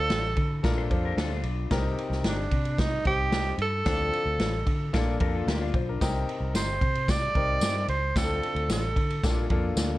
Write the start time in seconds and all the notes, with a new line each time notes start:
Already playing: D3 D4 F4 A4 C5
0.10 A1, snare, ride
0.37 D3, kick, ride
0.63 A#1 A#2 D4 F4 A4 A#4, kick, snare, ride
0.78 A4 C5
0.90 F2 D4 F4 A4 C5, kick, ride
1.05 G4 A#4
1.17 D2 F4 A4, snare, ride
1.32 D4 F4
1.43 B1, ride
1.71 C2 C3 C4 D4 G4 A#4, kick, snare, ride
1.78 D#4
1.98 ride
2.10 C2, snare
2.23 G1, snare, ride
2.29 D4
2.51 C3, kick, ride
2.65 ride
2.78 D#4, kick, snare, ride
3.05 C2 C4 D#4 G4 C5, kick, ride
3.32 snare, ride
3.58 G2, ride
3.62 A4
3.85 D2 D3 F3 C4 D4 F4 A4, kick, snare, ride
4.13 ride
4.26 D2
4.38 A1, snare, ride
4.66 D3, kick, ride
4.93 A#1 A#2 A#3 D4 F4 A4 A#4 D5, kick, snare, ride
5.20 F2 A#3 D4 F4 G4 A4 A#4, kick, ride
5.35 F4 A4
5.47 D2 D4 G4 A#4, snare, ride
5.60 D4 F4 D5
5.73 B1 C5, kick, ride
5.89 D4 A#4
6.01 C2 C3 C4 D#4 G4 A#4, kick, snare, ride, tambourine
6.29 ride
6.40 C2
6.54 G1 C5, snare, ride, tambourine
6.81 C3, kick, ride
6.95 ride
7.08 D5, kick, snare, ride, tambourine
7.35 C2 C4 D#4 G4 A#4, kick, ride
7.61 G2, snare, ride, tambourine
7.88 C#2 C5, ride
8.16 D2 D3 C4 D4 F4 A4, kick, snare, ride, tambourine
8.43 ride
8.55 D2, ride
8.68 A1, snare, ride, tambourine
8.73 A4
8.96 D3, kick, ride
9.10 ride
9.23 A#1 A#2 A#3 D4 F4 A4, kick, snare, ride, tambourine
9.50 F2 A#3 D4 F4 A4, kick, ride
9.76 D2, snare, ride, tambourine